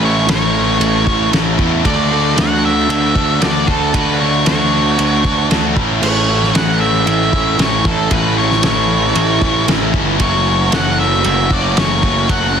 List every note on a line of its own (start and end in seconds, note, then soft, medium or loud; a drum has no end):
0.00 0.25 A1 loud
0.00 0.28 A2 loud
0.00 0.28 E3 loud
0.00 0.29 A3 medium
0.00 0.29 C#4 medium
0.00 0.29 E4 medium
0.05 0.28 C#5 medium
0.26 0.77 A1 loud
0.26 1.31 A2 medium
0.26 1.31 E3 medium
0.26 1.07 A3 medium
0.26 1.05 C#4 medium
0.26 snare loud
0.26 ride bell medium
0.30 1.05 E4 medium
0.30 1.30 C#5 medium
0.80 1.29 A1 loud
0.80 ride bell medium
1.06 1.32 A3 medium
1.06 1.32 C#4 medium
1.06 1.32 E4 medium
1.06 kick medium
1.31 1.57 A1 medium
1.31 1.83 A2 medium
1.31 1.83 E3 loud
1.31 1.59 A3 loud
1.31 1.57 C#4 loud
1.31 1.57 E4 medium
1.31 snare loud
1.31 ride bell medium
1.58 1.83 E2 medium
1.58 1.84 A3 medium
1.58 1.83 C#4 medium
1.58 1.83 E4 medium
1.58 kick loud
1.83 2.34 D2 loud
1.83 2.35 D3 loud
1.83 2.11 A3 loud
1.83 2.10 D4 loud
1.83 2.10 F#4 loud
1.83 2.39 D5 loud
1.83 kick loud
1.83 ride bell medium
2.10 2.36 A3 medium
2.10 2.36 D4 medium
2.10 2.37 F#4 medium
2.35 2.86 D2 medium
2.35 3.39 D3 medium
2.35 3.16 A3 medium
2.35 3.14 D4 medium
2.35 3.13 F#4 medium
2.35 2.65 F#5 loud
2.35 snare loud
2.35 ride bell medium
2.65 2.90 E5 loud
2.89 3.38 D2 loud
2.89 3.44 E5 loud
2.89 ride bell medium
3.14 3.40 A3 medium
3.14 3.40 D4 medium
3.14 3.41 F#4 medium
3.14 kick medium
3.40 3.66 D2 medium
3.40 3.93 D3 medium
3.40 3.68 A3 medium
3.40 3.67 D4 loud
3.40 3.66 F#4 loud
3.40 3.69 D5 medium
3.40 snare loud
3.40 ride bell medium
3.67 3.92 D2 medium
3.67 3.95 A3 medium
3.67 3.94 D4 medium
3.67 3.95 F#4 medium
3.67 3.94 A4 medium
3.67 kick loud
3.94 4.43 D2 loud
3.94 4.45 D3 medium
3.94 4.22 A3 loud
3.94 4.21 D4 loud
3.94 4.19 F#4 loud
3.94 4.20 B4 medium
3.94 kick loud
3.94 ride bell medium
4.20 4.47 A3 medium
4.20 4.47 D4 medium
4.20 4.47 F#4 medium
4.20 4.46 C#5 medium
4.46 4.96 D2 medium
4.46 5.49 D3 medium
4.46 5.26 A3 medium
4.46 5.25 D4 medium
4.46 5.24 F#4 medium
4.46 5.47 C#5 medium
4.46 snare loud
4.46 ride bell medium
4.99 5.48 D2 medium
4.99 ride bell medium
5.25 5.50 A3 medium
5.25 5.50 D4 medium
5.25 5.50 F#4 medium
5.25 kick medium
5.50 5.75 D2 medium
5.50 5.75 D3 medium
5.50 5.77 A3 medium
5.50 5.75 D4 medium
5.50 5.75 F#4 loud
5.50 snare loud
5.50 ride bell medium
5.76 6.01 A1 medium
5.76 6.01 A2 medium
5.76 6.02 E3 medium
5.76 6.02 A3 medium
5.76 6.03 C#4 medium
5.76 6.03 E4 medium
5.76 kick medium
6.01 6.52 A1 medium
6.01 7.58 A2 medium
6.01 6.54 E3 loud
6.01 6.30 A3 loud
6.01 6.28 C#4 loud
6.01 6.28 E4 loud
6.01 6.57 C#5 medium
6.01 crash loud
6.28 6.55 A3 medium
6.28 6.56 C#4 medium
6.28 6.56 E4 medium
6.43 snare soft
6.54 7.04 A1 medium
6.54 7.59 A2 medium
6.54 7.58 E3 medium
6.54 7.35 A3 medium
6.54 7.34 C#4 medium
6.54 7.32 E4 medium
6.54 6.80 F#5 loud
6.54 snare loud
6.54 ride bell medium
6.81 7.06 E5 loud
7.07 7.56 A1 medium
7.07 7.61 E5 loud
7.07 ride bell medium
7.33 7.59 A3 medium
7.33 7.60 C#4 medium
7.33 7.59 E4 medium
7.33 kick medium
7.58 7.83 A1 medium
7.58 8.10 A2 medium
7.58 8.10 E3 loud
7.58 7.86 A3 loud
7.58 7.85 C#4 medium
7.58 7.84 E4 loud
7.58 7.87 C#5 medium
7.58 snare loud
7.58 ride bell medium
7.85 8.10 A1 medium
7.85 8.12 A3 medium
7.85 8.12 C#4 medium
7.85 8.12 E4 medium
7.85 8.13 A4 medium
7.85 kick loud
8.11 8.61 A1 medium
8.11 8.63 A2 medium
8.11 8.63 E3 loud
8.11 8.40 A3 loud
8.11 8.39 C#4 loud
8.11 8.37 E4 loud
8.11 8.38 B4 medium
8.11 kick loud
8.11 ride bell medium
8.38 8.64 A3 medium
8.38 8.65 C#4 medium
8.38 8.65 E4 medium
8.38 8.64 C#5 medium
8.51 snare soft
8.61 9.13 A1 medium
8.61 9.67 A2 loud
8.61 9.67 E3 medium
8.61 9.43 A3 medium
8.61 9.65 C#5 medium
8.61 snare loud
8.61 ride bell medium
8.65 9.42 C#4 medium
8.65 9.40 E4 medium
9.15 9.65 A1 loud
9.15 ride bell medium
9.41 9.68 A3 medium
9.41 9.68 C#4 medium
9.41 9.68 E4 medium
9.41 kick medium
9.67 9.93 A1 loud
9.67 10.18 A2 loud
9.67 10.19 E3 medium
9.67 9.95 A3 loud
9.67 9.95 C#4 loud
9.67 9.93 E4 loud
9.67 snare loud
9.67 ride bell medium
9.93 10.18 G1 medium
9.93 10.20 A3 medium
9.93 10.20 C#4 medium
9.93 10.19 E4 medium
9.93 kick loud
10.20 10.69 F#1 loud
10.20 10.72 F#3 loud
10.20 10.47 A3 medium
10.20 10.47 C#4 loud
10.20 10.46 F#4 loud
10.20 10.75 C#5 medium
10.20 kick loud
10.20 ride bell medium
10.46 10.73 A3 medium
10.46 10.73 C#4 medium
10.46 10.74 F#4 medium
10.72 11.22 F#1 medium
10.72 11.75 F#3 medium
10.72 11.51 A3 medium
10.72 11.51 C#4 medium
10.72 11.50 F#4 medium
10.72 11.00 F#5 loud
10.72 snare loud
10.72 ride bell medium
11.00 11.25 E5 loud
11.24 11.74 F#1 loud
11.24 11.52 E5 loud
11.24 ride bell medium
11.50 11.77 A3 medium
11.50 11.77 C#4 medium
11.50 11.77 F#4 medium
11.50 11.79 D5 loud
11.50 kick medium
11.76 12.02 F#1 medium
11.76 12.28 F#3 medium
11.76 12.04 A3 loud
11.76 12.03 C#4 loud
11.76 12.02 F#4 loud
11.76 12.32 C#5 medium
11.76 snare loud
11.76 ride bell medium
12.03 12.28 F#1 medium
12.03 12.28 A3 medium
12.03 12.29 C#4 medium
12.03 12.30 F#4 medium
12.03 kick loud
12.29 12.60 F#1 medium
12.29 12.60 F#3 medium
12.29 12.55 A3 loud
12.29 12.55 C#4 loud
12.29 12.53 F#4 loud
12.29 12.60 F#5 medium
12.29 kick loud
12.29 ride bell medium
12.54 12.60 A3 medium
12.54 12.60 C#4 medium
12.54 12.60 F#4 medium